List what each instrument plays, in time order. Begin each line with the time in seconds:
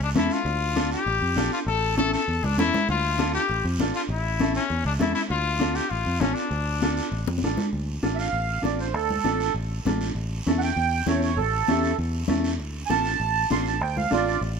0.00 fingered electric bass C#2, trumpet D4
0.15 fingered electric bass E2, clean electric guitar C#4 E4 A4, trumpet E4, high conga, low conga, short guiro
0.30 trumpet F4, short guiro
0.45 fingered electric bass D2, high conga, long guiro
0.76 clean electric guitar D4 F4 A4, high conga, short guiro
0.92 trumpet G4, short guiro
1.06 fingered electric bass A1, high conga, long guiro
1.21 fingered electric bass F2
1.35 fingered electric bass A#1, clean electric guitar D4 F4 A4, high conga, short guiro
1.52 trumpet F4, short guiro
1.66 fingered electric bass A1, trumpet A4, high conga, long guiro
1.98 clean electric guitar C#4 E4 A4, trumpet A4, high conga, short guiro
2.14 trumpet A4, short guiro
2.28 fingered electric bass E2, long guiro
2.43 fingered electric bass C#2, trumpet D4, low conga
2.57 fingered electric bass E2, clean electric guitar C#4 E4 A4, trumpet E4, low conga, short guiro
2.73 low conga, short guiro
2.88 fingered electric bass D2, trumpet F4, high conga, long guiro
3.19 clean electric guitar D4 F4 A4, high conga, short guiro
3.34 trumpet G4, short guiro
3.49 fingered electric bass A1, high conga, long guiro
3.64 fingered electric bass F2
3.79 fingered electric bass A1, clean electric guitar D4 F4 A4, high conga, short guiro
3.94 trumpet F4, short guiro
4.09 fingered electric bass A1, trumpet E4, high conga, long guiro
4.40 clean electric guitar C#4 E4 A4, high conga, short guiro
4.55 trumpet C#4, short guiro
4.70 fingered electric bass E2, high conga, long guiro
4.85 fingered electric bass C#2, trumpet D4
4.99 fingered electric bass E2, clean electric guitar C#4 E4 A4, trumpet E4, high conga, low conga, short guiro
5.15 trumpet E4, short guiro
5.30 fingered electric bass D2, trumpet F4, high conga, long guiro
5.60 clean electric guitar D4 F4 A4, high conga, short guiro
5.75 trumpet G4, short guiro
5.90 fingered electric bass A1, trumpet F4, high conga, long guiro
6.06 fingered electric bass F2
6.20 fingered electric bass A1, trumpet C#4, clean electric guitar D4 F4 A4, high conga, short guiro
6.34 trumpet D4, short guiro
6.51 fingered electric bass D2, high conga, long guiro
6.82 clean electric guitar D4 F4 A4, high conga, short guiro
6.97 short guiro
7.12 fingered electric bass A1, high conga, long guiro
7.27 fingered electric bass F2, high conga
7.38 high conga
7.42 fingered electric bass A1, clean electric guitar D4 F4 A4, short guiro
7.57 low conga, short guiro
7.73 fingered electric bass D2, high conga, long guiro
8.03 fingered electric bass A1, clean electric guitar D4 F4 A4, high conga, short guiro
8.15 accordion E5 F5, short guiro
8.33 fingered electric bass A1, high conga, long guiro
8.63 fingered electric bass A1, clean electric guitar D4 F4 A4, accordion D5, high conga, short guiro
8.79 accordion C5, short guiro
8.94 fingered electric bass D2, accordion A4, high conga, long guiro
9.10 low conga
9.24 fingered electric bass A1, clean electric guitar D4 F4 A4, high conga, short guiro
9.40 short guiro
9.54 fingered electric bass A1, high conga, long guiro
9.85 fingered electric bass A1, clean electric guitar D4 F4 A4, high conga, low conga, short guiro
10.01 short guiro
10.15 fingered electric bass A1, high conga, long guiro
10.46 fingered electric bass E2, clean electric guitar C#4 E4 A4, high conga, short guiro
10.58 accordion F#5, short guiro
10.63 accordion G5
10.76 fingered electric bass E2, high conga, long guiro
11.06 fingered electric bass E2, clean electric guitar C#4 E4 A4, accordion C#5, high conga, short guiro
11.22 accordion C#5, short guiro
11.37 fingered electric bass A1, accordion A4, high conga, long guiro
11.68 fingered electric bass E2, clean electric guitar C#4 E4 G4, high conga, short guiro
11.83 short guiro
11.98 fingered electric bass E2, high conga, long guiro
12.28 fingered electric bass E2, clean electric guitar C#4 E4 A4, high conga, low conga, short guiro
12.44 short guiro
12.58 fingered electric bass D2, high conga, long guiro
12.86 fingered electric bass A1, clean electric guitar D4, accordion G#5 A5, short guiro
12.90 clean electric guitar F4 A4, high conga
13.05 short guiro
13.20 fingered electric bass A1, high conga, long guiro
13.50 fingered electric bass A1, clean electric guitar D4 F4 A4, accordion C6, high conga, short guiro
13.66 accordion A5, short guiro
13.81 fingered electric bass D2, accordion G5, high conga, long guiro
13.97 accordion F5, low conga
14.11 fingered electric bass A1, clean electric guitar D4 F4 A4, accordion F4 D5, high conga, short guiro
14.28 short guiro
14.41 fingered electric bass A1, high conga, long guiro